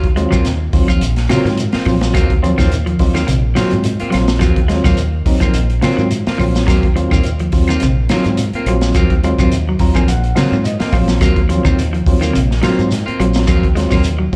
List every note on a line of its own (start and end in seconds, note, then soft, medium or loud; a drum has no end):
0.00 0.26 D#2 medium
0.00 kick medium
0.00 closed hi-hat soft
0.16 0.45 F#3 medium
0.16 0.24 G#3 medium
0.16 0.45 C4 medium
0.16 0.45 F4 medium
0.16 closed hi-hat soft
0.16 shekere soft
0.31 0.68 D#2 medium
0.31 0.46 F#3 medium
0.31 0.48 A#3 soft
0.31 0.48 C4 medium
0.31 0.47 F4 medium
0.31 kick medium
0.31 claves medium
0.31 shekere medium
0.45 snare soft
0.45 closed hi-hat medium
0.45 shekere medium
0.73 0.98 D#2 medium
0.73 1.01 F#3 medium
0.73 1.01 C4 medium
0.73 1.01 F4 medium
0.73 kick medium
0.73 open hi-hat medium
0.73 shekere soft
0.88 1.03 F3 medium
0.88 1.05 F4 medium
0.88 muted clean electric guitar stroke medium
0.88 kick medium
0.88 closed hi-hat soft
0.88 claves medium
0.88 shekere medium
1.01 1.26 A#1 medium
1.01 closed hi-hat medium
1.01 shekere medium
1.16 snare soft
1.16 closed hi-hat soft
1.29 1.38 C#3 medium
1.29 1.48 F#3 medium
1.29 1.58 F#3 medium
1.29 1.48 A#3 medium
1.29 1.48 C4 medium
1.29 1.58 C4 medium
1.29 1.48 F4 medium
1.29 1.58 F4 medium
1.29 snare medium
1.29 closed hi-hat soft
1.29 claves medium
1.29 shekere medium
1.45 1.70 G#2 medium
1.45 1.60 D#3 medium
1.45 snare soft
1.45 shekere soft
1.57 closed hi-hat medium
1.57 shekere medium
1.72 1.90 A#3 soft
1.72 1.90 C4 medium
1.72 1.89 F4 medium
1.72 muted fingered electric bass stroke soft
1.72 snare medium
1.72 closed hi-hat soft
1.85 2.11 A#1 medium
1.85 2.01 F3 medium
1.85 2.14 F#3 medium
1.85 2.15 C4 medium
1.85 2.14 F4 medium
1.85 kick medium
1.85 open hi-hat medium
1.85 claves medium
1.85 shekere soft
2.01 snare medium
2.01 closed hi-hat soft
2.01 shekere medium
2.13 2.53 D#2 medium
2.13 2.32 F#3 medium
2.13 2.29 F#3 medium
2.13 2.32 A#3 medium
2.13 2.32 C4 medium
2.13 2.33 F4 medium
2.13 kick medium
2.13 closed hi-hat medium
2.13 claves medium
2.13 shekere medium
2.30 kick medium
2.30 closed hi-hat soft
2.43 2.52 F3 medium
2.43 2.71 F#3 medium
2.43 2.71 C4 medium
2.43 2.71 F4 medium
2.43 closed hi-hat soft
2.43 shekere soft
2.58 2.95 D#2 medium
2.58 2.73 D#3 medium
2.58 2.75 A#3 soft
2.58 2.75 C4 medium
2.58 2.74 F4 medium
2.58 kick medium
2.58 snare soft
2.58 claves medium
2.58 shekere medium
2.71 closed hi-hat medium
2.71 shekere medium
2.86 3.01 F3 medium
2.86 closed hi-hat soft
2.99 3.24 D#2 medium
2.99 3.28 F#3 medium
2.99 3.28 C4 medium
2.99 3.28 F4 medium
2.99 kick medium
2.99 open hi-hat medium
2.99 shekere soft
3.14 3.22 D#3 medium
3.14 3.31 A#3 soft
3.14 3.31 C4 medium
3.14 3.31 F4 medium
3.14 snare soft
3.14 closed hi-hat soft
3.14 claves medium
3.14 shekere medium
3.27 3.53 A#1 medium
3.27 3.43 C3 medium
3.27 closed hi-hat medium
3.27 shekere medium
3.55 3.71 D#3 medium
3.55 3.74 F#3 medium
3.55 3.85 F#3 medium
3.55 3.74 A#3 medium
3.55 3.74 C4 medium
3.55 3.85 C4 medium
3.55 3.74 F4 medium
3.55 3.85 F4 medium
3.55 snare medium
3.55 closed hi-hat medium
3.55 claves medium
3.55 shekere medium
3.71 3.97 G#2 medium
3.71 closed hi-hat soft
3.71 shekere soft
3.84 closed hi-hat medium
3.84 shekere medium
4.00 4.17 A#3 soft
4.00 4.17 C4 soft
4.00 4.16 F4 medium
4.00 muted fingered electric bass stroke soft
4.00 closed hi-hat soft
4.10 4.39 A#1 medium
4.10 4.26 F#3 medium
4.10 4.41 F#3 medium
4.10 4.41 C4 medium
4.10 4.41 F4 medium
4.10 snare soft
4.10 closed hi-hat medium
4.10 claves medium
4.10 shekere soft
4.28 snare medium
4.28 closed hi-hat soft
4.28 shekere medium
4.39 4.80 D#2 medium
4.39 4.55 F3 medium
4.39 4.59 F#3 medium
4.39 4.59 A#3 medium
4.39 4.59 C4 medium
4.39 4.59 F4 medium
4.39 kick medium
4.39 closed hi-hat medium
4.39 claves medium
4.39 shekere medium
4.56 kick medium
4.56 closed hi-hat soft
4.68 4.98 F#3 medium
4.68 4.77 G#3 medium
4.68 4.98 C4 medium
4.68 4.98 F4 medium
4.68 snare soft
4.68 closed hi-hat soft
4.68 shekere soft
4.84 5.21 D#2 medium
4.84 5.00 F#3 medium
4.84 5.01 A#3 soft
4.84 5.01 C4 medium
4.84 5.01 F4 medium
4.84 kick medium
4.84 snare soft
4.84 claves medium
4.84 shekere medium
4.97 closed hi-hat medium
4.97 shekere medium
5.26 5.51 D#2 medium
5.26 5.55 F#3 medium
5.26 5.55 C4 medium
5.26 5.55 D#4 medium
5.26 kick medium
5.26 open hi-hat medium
5.26 shekere soft
5.40 5.56 F3 medium
5.40 5.58 A#3 soft
5.40 5.58 C4 medium
5.40 5.57 F4 medium
5.40 kick medium
5.40 closed hi-hat soft
5.40 claves medium
5.40 shekere medium
5.54 5.79 A#1 medium
5.54 closed hi-hat medium
5.54 shekere medium
5.70 closed hi-hat soft
5.81 5.90 C#3 medium
5.81 6.11 F#3 medium
5.81 6.01 F#3 medium
5.81 6.01 A#3 medium
5.81 6.11 C4 medium
5.81 6.02 C4 medium
5.81 6.11 F4 medium
5.81 6.02 F4 medium
5.81 snare medium
5.81 closed hi-hat soft
5.81 claves medium
5.81 shekere medium
5.97 6.23 G#2 medium
5.97 6.13 D#3 medium
5.97 shekere soft
6.11 closed hi-hat medium
6.11 shekere medium
6.27 6.44 A#3 soft
6.27 6.43 C4 soft
6.27 6.43 F4 medium
6.27 muted fingered electric bass stroke soft
6.27 snare medium
6.27 closed hi-hat soft
6.38 6.65 A#1 medium
6.38 6.54 F3 medium
6.38 6.68 F#3 medium
6.38 6.68 C4 medium
6.38 6.68 F4 medium
6.38 kick medium
6.38 open hi-hat medium
6.38 claves medium
6.38 shekere soft
6.55 snare medium
6.55 closed hi-hat soft
6.55 shekere medium
6.67 7.07 D#2 medium
6.67 6.82 F#3 medium
6.67 6.86 F#3 medium
6.67 6.86 A#3 medium
6.67 6.86 C4 medium
6.67 6.87 F4 medium
6.67 kick medium
6.67 snare soft
6.67 closed hi-hat medium
6.67 claves medium
6.67 shekere medium
6.83 kick medium
6.83 closed hi-hat soft
6.96 7.24 F#3 medium
6.96 7.25 C4 medium
6.96 7.25 F4 medium
6.96 muted clean electric guitar stroke medium
6.96 closed hi-hat soft
6.96 shekere soft
7.11 7.48 D#2 medium
7.11 7.27 D#3 medium
7.11 7.28 A#3 soft
7.11 7.28 C4 medium
7.11 7.28 F4 medium
7.11 kick medium
7.11 claves medium
7.11 shekere medium
7.23 closed hi-hat medium
7.23 shekere medium
7.39 7.55 F3 medium
7.39 closed hi-hat soft
7.52 7.78 D#2 medium
7.52 7.81 F#3 medium
7.52 7.81 C4 medium
7.52 7.81 F4 medium
7.52 kick medium
7.52 open hi-hat medium
7.52 shekere soft
7.68 7.76 D#3 medium
7.68 7.85 A#3 soft
7.68 7.85 C4 medium
7.68 7.85 F4 medium
7.68 closed hi-hat soft
7.68 claves medium
7.68 shekere medium
7.80 8.07 A#1 medium
7.80 7.98 C3 medium
7.80 closed hi-hat medium
7.80 shekere medium
8.09 8.26 D#3 medium
8.09 8.38 F#3 medium
8.09 8.28 F#3 medium
8.09 8.28 A#3 medium
8.09 8.38 C4 medium
8.09 8.28 C4 medium
8.09 8.38 F4 medium
8.09 8.29 F4 medium
8.09 snare medium
8.09 closed hi-hat soft
8.09 claves medium
8.09 shekere medium
8.24 8.50 G#2 medium
8.24 closed hi-hat soft
8.24 shekere soft
8.37 closed hi-hat medium
8.37 shekere medium
8.53 8.71 A#3 soft
8.53 8.71 C4 medium
8.53 8.70 F4 medium
8.53 muted fingered electric bass stroke soft
8.53 closed hi-hat soft
8.66 8.91 A#1 medium
8.66 8.95 F#3 medium
8.66 8.83 F#3 medium
8.66 8.95 C4 medium
8.66 8.95 F4 medium
8.66 closed hi-hat soft
8.66 claves medium
8.66 shekere soft
8.81 snare medium
8.81 closed hi-hat soft
8.81 shekere medium
8.94 9.33 D#2 medium
8.94 9.11 F3 medium
8.94 9.13 F#3 medium
8.94 9.14 A#3 medium
8.94 9.14 C4 medium
8.94 9.14 F4 medium
8.94 kick medium
8.94 closed hi-hat medium
8.94 claves medium
8.94 shekere medium
9.10 kick medium
9.10 closed hi-hat soft
9.23 9.52 F#3 medium
9.23 9.32 G#3 medium
9.23 9.52 C4 medium
9.23 9.52 F4 medium
9.23 closed hi-hat soft
9.23 shekere soft
9.38 9.75 D#2 medium
9.38 9.55 F#3 medium
9.38 9.55 A#3 soft
9.38 9.55 C4 medium
9.38 9.55 F4 medium
9.38 kick medium
9.38 claves medium
9.38 shekere medium
9.52 closed hi-hat medium
9.52 shekere medium
9.69 9.83 F#3 medium
9.79 10.05 D#2 medium
9.79 10.08 F#3 medium
9.79 10.08 C4 medium
9.79 10.09 F4 medium
9.79 9.94 A#5 medium
9.79 kick medium
9.79 open hi-hat medium
9.79 shekere soft
9.94 10.11 F3 medium
9.94 10.12 A#3 soft
9.94 10.11 C4 medium
9.94 10.11 F4 medium
9.94 10.07 G#5 medium
9.94 kick medium
9.94 closed hi-hat soft
9.94 claves medium
9.94 shekere medium
10.07 10.33 A#1 medium
10.07 10.35 F#5 medium
10.07 closed hi-hat medium
10.07 shekere medium
10.24 closed hi-hat soft
10.35 10.45 C#3 medium
10.35 10.64 F#3 medium
10.35 10.55 F#3 medium
10.35 10.55 A#3 medium
10.35 10.64 C4 medium
10.35 10.55 C4 medium
10.35 10.65 F4 medium
10.35 10.55 F4 medium
10.35 10.62 F5 medium
10.35 snare medium
10.35 closed hi-hat medium
10.35 claves medium
10.35 shekere medium
10.52 10.77 G#2 medium
10.52 muted clean electric guitar stroke medium
10.52 shekere soft
10.64 10.91 D#5 medium
10.64 closed hi-hat medium
10.64 shekere medium
10.80 10.97 A#3 soft
10.80 10.97 C4 soft
10.80 10.96 F4 medium
10.80 muted fingered electric bass stroke soft
10.80 snare medium
10.80 closed hi-hat soft
10.92 11.18 A#1 medium
10.92 11.09 F3 medium
10.92 11.21 F#3 medium
10.92 11.21 C4 medium
10.92 11.21 F4 medium
10.92 11.19 F5 medium
10.92 kick medium
10.92 open hi-hat medium
10.92 claves medium
10.92 shekere soft
11.08 snare medium
11.08 closed hi-hat soft
11.08 shekere medium
11.21 11.60 D#2 medium
11.21 11.37 F#3 medium
11.21 11.39 F#3 medium
11.21 11.40 A#3 medium
11.21 11.40 C4 medium
11.21 11.40 F4 medium
11.21 kick medium
11.21 closed hi-hat medium
11.21 claves medium
11.21 shekere medium
11.36 kick medium
11.36 closed hi-hat soft
11.49 11.58 F3 medium
11.49 11.78 F#3 medium
11.49 11.78 C4 medium
11.49 11.78 F4 medium
11.49 closed hi-hat soft
11.49 shekere soft
11.65 12.01 D#2 medium
11.65 11.80 D#3 medium
11.65 11.82 A#3 soft
11.65 11.81 C4 medium
11.65 11.81 F4 medium
11.65 kick medium
11.65 claves medium
11.65 shekere medium
11.79 closed hi-hat medium
11.79 shekere medium
11.93 12.08 F3 medium
11.93 closed hi-hat soft
12.06 12.31 D#2 medium
12.06 12.35 F#3 medium
12.06 12.35 C4 medium
12.06 12.35 F4 medium
12.06 kick medium
12.06 open hi-hat medium
12.06 shekere soft
12.21 12.28 D#3 medium
12.21 12.38 A#3 soft
12.21 12.38 C4 soft
12.21 12.38 F4 medium
12.21 closed hi-hat soft
12.21 claves medium
12.21 shekere medium
12.33 12.60 A#1 medium
12.33 12.49 C3 medium
12.33 closed hi-hat medium
12.33 shekere medium
12.51 snare soft
12.62 12.77 D#3 medium
12.62 12.81 F#3 medium
12.62 12.92 F#3 medium
12.62 12.81 A#3 medium
12.62 12.91 C4 medium
12.62 12.81 C4 medium
12.62 12.81 F4 medium
12.62 12.92 F4 medium
12.62 snare medium
12.62 closed hi-hat medium
12.62 claves medium
12.62 shekere medium
12.79 13.04 G#2 medium
12.79 closed hi-hat soft
12.79 shekere soft
12.91 snare soft
12.91 closed hi-hat medium
12.91 shekere medium
13.06 13.23 A#3 soft
13.06 13.23 C4 medium
13.06 13.22 F4 medium
13.06 muted fingered electric bass stroke soft
13.06 closed hi-hat soft
13.20 13.45 A#1 medium
13.20 13.48 F#3 medium
13.20 13.35 F#3 medium
13.20 13.48 C4 medium
13.20 13.48 F4 medium
13.20 closed hi-hat soft
13.20 claves medium
13.20 shekere soft
13.34 snare medium
13.34 closed hi-hat soft
13.34 shekere medium
13.47 13.86 D#2 medium
13.47 13.63 F3 medium
13.47 13.66 F#3 medium
13.47 13.66 A#3 medium
13.47 13.66 C4 medium
13.47 13.67 F4 medium
13.47 kick medium
13.47 closed hi-hat medium
13.47 claves medium
13.47 shekere medium
13.63 kick medium
13.63 closed hi-hat soft
13.75 14.05 F#3 medium
13.75 13.84 G#3 medium
13.75 14.05 C4 medium
13.75 14.05 F4 medium
13.75 snare soft
13.75 closed hi-hat soft
13.75 shekere soft
13.90 14.28 D#2 medium
13.90 14.06 F#3 medium
13.90 14.08 A#3 soft
13.90 14.08 C4 medium
13.90 14.08 F4 medium
13.90 kick medium
13.90 snare soft
13.90 claves medium
13.90 shekere medium
14.03 closed hi-hat medium
14.03 shekere medium
14.19 14.34 F#3 medium
14.33 14.36 F#3 medium